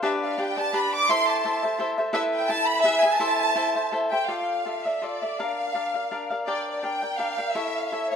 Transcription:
0.03 cavaquinho D4 G4 B4 D5, violin section E5
0.23 violin section F5
0.38 cavaquinho D4 G4 B4 D5, violin section G5
0.57 cavaquinho G4 B4 D5, violin section A5
0.73 cavaquinho D4 G4 B4 D5, violin section B5
0.95 violin section D6
1.09 cavaquinho E4 A4 C5 E5, violin section C6
1.29 violin section A5
1.45 cavaquinho E4 A4 C5 E5
1.63 cavaquinho A4 C5 E5
1.78 cavaquinho E4 A4 C5 E5
1.98 cavaquinho A4 C5 E5
2.13 cavaquinho E4 A4 B4 E5, violin section E5
2.34 violin section G5
2.49 cavaquinho E4 A4 B4 E5, violin section A5
2.66 violin section B5
2.83 cavaquinho E4 G#4 B4 E5, violin section E5
3.00 cavaquinho B4 E5, violin section G#5
3.04 cavaquinho G#4
3.16 cavaquinho E4, violin section A5
3.20 cavaquinho A4 C5 E5
3.55 cavaquinho E4 A4 C5 E5
3.75 cavaquinho A4 C5 E5
3.92 cavaquinho E4 A4 C5 E5
4.11 cavaquinho A4 C5 E5, violin section G5
4.28 cavaquinho F4 A4 D5, violin section F5
4.65 cavaquinho F4 A4 D5 E5
4.85 cavaquinho A4 D5 E5, violin section E5
5.02 cavaquinho F4 A4 D5 E5, violin section D5
5.22 cavaquinho A4 D5 E5
5.39 cavaquinho D4 A#4 D5 F5, violin section F5
5.74 cavaquinho D4 A#4 D5 F5
5.94 cavaquinho A#4 D5 F5
6.11 cavaquinho D4 A#4 D5 F5
6.30 cavaquinho A#4 D5 F5
6.46 cavaquinho D4 A#4 D5 G5, violin section D5
6.71 violin section D5
6.82 cavaquinho D4 A#4 D5 G5, violin section G5
7.02 cavaquinho A#4 D5 G5
7.17 cavaquinho D4 A#4 D5 G5, violin section F5
7.37 cavaquinho A#4 D5 G5
7.53 cavaquinho E4 A4 C#5 E5, violin section E5
7.78 violin section F5
7.89 cavaquinho E4 A4 C#5, violin section E5
7.94 cavaquinho E5
8.10 violin section C#5, cavaquinho E5

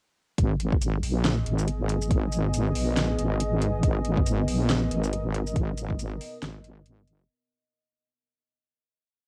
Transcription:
0.38 wobble bass G#1, ambient pad B3 G#4 D#5, kick, closed hi-hat
0.60 closed hi-hat
0.72 kick
0.81 closed hi-hat, shaker
1.03 wobble bass A#1, open hi-hat
1.25 snare, closed hi-hat
1.46 wobble bass G#1, closed hi-hat
1.59 shaker
1.68 closed hi-hat
1.89 closed hi-hat
2.02 shaker
2.11 wobble bass G#1, kick, closed hi-hat
2.32 closed hi-hat, shaker
2.54 closed hi-hat, shaker
2.75 wobble bass A#1, open hi-hat
2.97 snare, closed hi-hat
3.19 wobble bass G#1, closed hi-hat
3.40 closed hi-hat
3.62 closed hi-hat
3.83 wobble bass G#1, ambient pad A#4, kick, closed hi-hat
4.05 closed hi-hat
4.17 kick
4.27 closed hi-hat, shaker
4.48 wobble bass A#1, open hi-hat
4.70 snare, closed hi-hat
4.91 wobble bass G#1, closed hi-hat
5.04 shaker
5.13 closed hi-hat
5.34 closed hi-hat
5.47 shaker
5.56 wobble bass G#1, kick, closed hi-hat
5.78 closed hi-hat, shaker
5.90 kick
5.99 closed hi-hat, shaker
6.21 open hi-hat
6.42 wobble bass G#1, snare, closed hi-hat
6.64 closed hi-hat
6.86 closed hi-hat
7.02 wobble bass G1
7.07 closed hi-hat

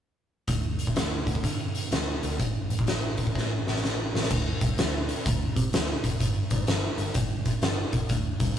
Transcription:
0.48 picked electric bass D2, kick, closed hi-hat
0.79 closed hi-hat
0.87 kick
0.96 picked electric bass D2, snare, closed hi-hat
1.27 picked electric bass D2, kick, closed hi-hat
1.35 kick
1.43 picked electric bass D3, kick, closed hi-hat
1.75 closed hi-hat
1.91 picked electric bass D2, snare, closed hi-hat
2.23 picked electric bass D2, closed hi-hat
2.40 picked electric bass A1, kick, closed hi-hat
2.70 picked electric bass A1, closed hi-hat
2.79 kick
2.87 picked electric bass A1, snare, closed hi-hat
3.17 picked electric bass A1, kick, closed hi-hat
3.27 kick
3.35 picked electric bass A1, kick, snare
3.67 picked electric bass A1, snare
3.76 snare
3.84 picked electric bass A1, snare
4.14 picked electric bass A1, snare
4.23 snare
4.31 picked electric bass D2, kick, crash
4.61 picked electric bass C2, kick, closed hi-hat
4.78 picked electric bass D2, snare, closed hi-hat
5.09 closed hi-hat
5.26 picked electric bass D2, kick, closed hi-hat
5.56 picked electric bass C3, kick, closed hi-hat
5.73 picked electric bass D2, snare, closed hi-hat
6.04 picked electric bass F1, kick, closed hi-hat
6.20 picked electric bass G1, kick, closed hi-hat
6.50 picked electric bass G1, kick, closed hi-hat
6.67 picked electric bass G1, snare, closed hi-hat
6.98 picked electric bass G1, closed hi-hat
7.14 picked electric bass G1, kick, closed hi-hat
7.45 kick, closed hi-hat
7.62 picked electric bass G1, snare, closed hi-hat
7.93 picked electric bass F1, kick, closed hi-hat
8.09 picked electric bass D2, kick, closed hi-hat
8.40 picked electric bass C2, kick, closed hi-hat

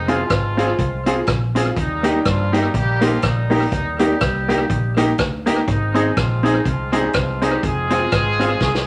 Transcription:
Already playing: fingered electric bass F1
0.08 horn section F3 G#3 C4 F4, hollow-body jazz guitar C4 F4 G#4, upright piano C4 F4 G#4, closed hi-hat
0.30 fingered electric bass G#1, kick, cross-stick, closed hi-hat
0.57 upright piano C4 F4 G#4, hollow-body jazz guitar C4 F4 G#4, closed hi-hat
0.79 fingered electric bass C2, kick, closed hi-hat
1.06 upright piano C4 F4 G#4, hollow-body jazz guitar C4 F4 G#4, closed hi-hat
1.27 fingered electric bass A#1, muted hollow-body jazz guitar stroke, kick, cross-stick, closed hi-hat
1.55 upright piano C4 F4 G#4, hollow-body jazz guitar C4 F4 G#4, closed hi-hat
1.76 fingered electric bass D#2, horn section D#3 G3 A#3 D#4, kick, closed hi-hat
2.03 hollow-body jazz guitar A#3 D#4 G4, upright piano A#3 D#4 G4, closed hi-hat
2.25 fingered electric bass G2, horn section F3 F4, kick, cross-stick, closed hi-hat
2.52 horn section D#3 D#4, upright piano A#3 D#4 G4, hollow-body jazz guitar A#3 D#4 G4, closed hi-hat
2.74 fingered electric bass A#1, horn section G3 A#3 D#4 G4, kick, closed hi-hat
3.01 horn section F3 F4, upright piano A#3 D#4 G4, hollow-body jazz guitar A#3 D#4 G4, closed hi-hat
3.22 fingered electric bass A#1, horn section D#3 G3 A#3 D#4, muted hollow-body jazz guitar stroke, kick, cross-stick, closed hi-hat
3.50 hollow-body jazz guitar A#3 D#4 G4, upright piano A#3 D#4 G4, open hi-hat
3.72 fingered electric bass D#2, horn section D#3 G3 A#3 D#4, kick, closed hi-hat
3.99 horn section G3 A#3 D#4 G4, upright piano A#3 D#4 G4, hollow-body jazz guitar A#3 D#4 G4, closed hi-hat
4.20 fingered electric bass C2, kick, cross-stick, closed hi-hat
4.48 hollow-body jazz guitar A#3 D#4 G4, upright piano A#3 D#4 G4, closed hi-hat
4.70 fingered electric bass A#1, kick, closed hi-hat
4.97 hollow-body jazz guitar A#3 D#4 G4, upright piano A#3 D#4 G4, closed hi-hat
5.18 fingered electric bass D2, muted hollow-body jazz guitar stroke, kick, cross-stick, closed hi-hat
5.46 upright piano A#3 D#4 G4, hollow-body jazz guitar A#3 D#4 G4, closed hi-hat
5.68 fingered electric bass G#1, horn section D#3 G#3 C4 D#4, kick, closed hi-hat
5.94 hollow-body jazz guitar C4 D#4 G#4, upright piano C4 D#4 G#4, closed hi-hat
6.17 fingered electric bass A#1, horn section F3 F4, kick, cross-stick, closed hi-hat
6.43 horn section D#3 D#4, hollow-body jazz guitar C4 D#4 G#4, upright piano C4 D#4 G#4, closed hi-hat
6.65 fingered electric bass C2, horn section F3 G#3 C4 F4, kick, closed hi-hat
6.92 horn section G3 G4, upright piano C4 D#4 G#4, hollow-body jazz guitar C4 D#4 G#4, closed hi-hat
7.13 fingered electric bass C2, horn section F3 F4, muted hollow-body jazz guitar stroke, kick, cross-stick, closed hi-hat
7.41 horn section G3 G4, upright piano C4 D#4 G#4, hollow-body jazz guitar C4 D#4 G#4, closed hi-hat
7.63 fingered electric bass F1, horn section G#3 C4 F4 G#4, kick, closed hi-hat
7.90 hollow-body jazz guitar C4 F4 G#4, upright piano C4 F4 G#4, closed hi-hat
8.12 fingered electric bass G#1, kick, cross-stick, closed hi-hat
8.39 upright piano C4 F4 G#4, hollow-body jazz guitar C4 F4 G#4, closed hi-hat
8.61 fingered electric bass C2, muted hollow-body jazz guitar stroke, kick, snare
8.75 snare

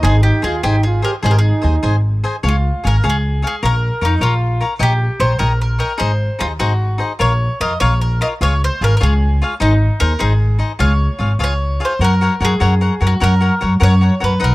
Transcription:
0.02 upright bass G#1, trumpet D#4, cavaquinho G#4 C5 D#5 G#5, mandolin G#4
0.23 trumpet D#4, mandolin G4
0.42 upright bass D#2, trumpet F4, cavaquinho G#4 C5 D#5 G#5, mandolin G#4
0.63 upright bass G#1, trumpet D#4, mandolin G4, cavaquinho G#4 C5 D#5 G#5
0.83 trumpet F4, mandolin G#4
1.02 trumpet G4, cavaquinho G#4 C5 D#5 G#5, mandolin A#4
1.23 upright bass G#1, cavaquinho G#4 C5 D#5 G#5, mandolin G#4
1.27 trumpet D#4 G4, mandolin A#4
1.38 trumpet D#4, mandolin G#4
1.62 upright bass D#2, cavaquinho G#4 C5 D#5 G#5
1.83 upright bass G#1, cavaquinho G#4 C5 D#5 G#5
2.24 cavaquinho G#4 C5 D#5 G#5
2.43 upright bass C#2, cavaquinho G#4 C#5 F5 G#5
2.48 mandolin F4
2.84 upright bass G#1, cavaquinho G#4 C#5 F5 G#5, mandolin A#4
3.04 upright bass C#2, cavaquinho G#4 C#5 F5 G#5
3.10 mandolin G#4
3.42 cavaquinho G#4 C#5 F5 G#5
3.47 mandolin G#4
3.63 upright bass A#1, cavaquinho A#4 C#5 F5 A#5, mandolin A#4
4.01 upright bass F2, mandolin D#4, cavaquinho A#4 C#5 F5 A#5
4.21 upright bass A#1, mandolin F4, cavaquinho A#4 C#5 F5 A#5
4.61 cavaquinho A#4 C#5 F5 A#5
4.79 upright bass A#1, mandolin G4, cavaquinho C#5 D#5 G5 A#5
5.20 upright bass A#1, mandolin C5, cavaquinho C#5 D#5 G5 A#5
5.39 upright bass A#1, mandolin A#4, cavaquinho C#5 D#5 G5 A#5
5.62 mandolin A#4
5.79 mandolin A#4, cavaquinho C#5 D#5 G5 A#5
5.98 upright bass G#1, cavaquinho D#4 G#4 C5 D#5, mandolin C5
6.39 upright bass D#2, cavaquinho D#4 G#4 C5 D#5, mandolin F4
6.59 upright bass G#1, cavaquinho D#4 G#4 C5 D#5, mandolin F#4
6.98 cavaquinho D#4 G#4 C5 D#5
7.19 upright bass A#1, cavaquinho F4 A#4 C#5 F5, mandolin C#5
7.60 upright bass F2, cavaquinho F4 A#4 C#5 F5, mandolin D#5
7.80 upright bass A#1, cavaquinho F4 A#4 C#5 F5, mandolin C#5
8.01 mandolin A#4
8.21 cavaquinho F4 A#4 C#5 F5, mandolin D#5
8.41 upright bass C#2, cavaquinho F4 G#4 C#5 F5, mandolin C#5
8.64 mandolin C5
8.81 upright bass G#1, cavaquinho F4 G#4 C#5 F5, mandolin A#4
8.97 cavaquinho F4 C#5, mandolin A#4
9.01 upright bass C#2, cavaquinho G#4 F5, mandolin G#4
9.42 cavaquinho F4 G#4 C#5 F5
9.60 upright bass G#1, cavaquinho D#4 G#4 C5 D#5, mandolin D#4
10.00 upright bass D#2, cavaquinho D#4 G#4 C5 D#5, mandolin A#4
10.19 upright bass G#1, cavaquinho D#4 G#4 C5 D#5, mandolin G#4
10.59 cavaquinho D#4 G#4 C5 D#5
10.79 upright bass C#2, cavaquinho F4 G#4 C#5 F5, mandolin C#5
11.19 upright bass G#1, cavaquinho F4 G#4 C#5 F5
11.39 upright bass C#2, cavaquinho F4 G#4 C#5 F5
11.44 mandolin C#5
11.80 cavaquinho F4 G#4 C#5 F5
11.85 mandolin C5
11.99 upright bass F#2, cavaquinho F#4 A#4 C#5 F#5
12.04 mandolin A#4
12.21 cavaquinho F#4 A#4 C#5 F#5
12.40 upright bass F#2, cavaquinho F#4 A#4 C#5 F#5
12.45 mandolin G#4
12.60 upright bass F#2, cavaquinho F#4 A#4 C#5 F#5
12.81 cavaquinho F#4 A#4 C#5 F#5
13.01 upright bass F#2, cavaquinho F#4 A#4 C#5 F#5
13.07 mandolin F#4
13.20 upright bass F#2, cavaquinho F#4 A#4 C#5 F#5, mandolin A#4
13.40 cavaquinho F#4 A#4 C#5 F#5
13.61 upright bass F#2, cavaquinho F#4 A#4 C#5 F#5
13.80 upright bass F#2, cavaquinho F#4 A#4 C#5 F#5, mandolin C#5
14.01 cavaquinho F#4 A#4 C#5 F#5
14.20 upright bass F#2, cavaquinho F#4 A#4 C#5 F#5, mandolin B4
14.40 upright bass B1, cavaquinho D#4 B4 D#5 F#5
14.44 mandolin A#4

